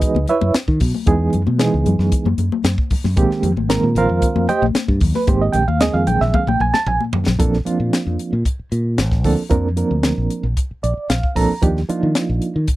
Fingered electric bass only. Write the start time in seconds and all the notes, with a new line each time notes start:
0.15 C#2
0.28 muted fingered electric bass stroke
0.42 F#2
0.55 muted fingered electric bass stroke
0.68 D#3
0.81 B2
1.07 E2
1.34 F#2
1.47 B2
1.74 C#2
1.86 F#2
1.99 F#2
2.25 F#2
2.38 F#2
2.64 F#2
2.91 muted fingered electric bass stroke
3.04 F#2
3.17 A#1
3.31 muted fingered electric bass stroke
3.43 F2
3.56 G#1
3.83 A#2
3.95 A#1
4.09 F2
4.36 F2
4.49 muted fingered electric bass stroke
4.62 A#1
4.88 G2
5.01 D#2
5.28 G#1
5.54 A#1
5.68 D#2
5.94 F2
6.07 A#1
6.21 A#1
6.47 A#1
6.60 A#1
6.86 A#1
7.13 muted fingered electric bass stroke
7.28 A#1
7.40 A#1
7.67 muted fingered electric bass stroke
7.80 A#2
8.07 F2
8.33 A#2
8.59 muted fingered electric bass stroke
8.72 A#2
8.98 A1
9.25 D2
9.51 F2
9.91 D2
10.18 A#1
10.43 A#1
10.71 muted fingered electric bass stroke
10.84 A#1
10.97 muted fingered electric bass stroke
11.10 A#1
11.37 A#1
11.51 muted fingered electric bass stroke
11.63 D#2
12.03 D#3
12.29 A#1
12.56 D#3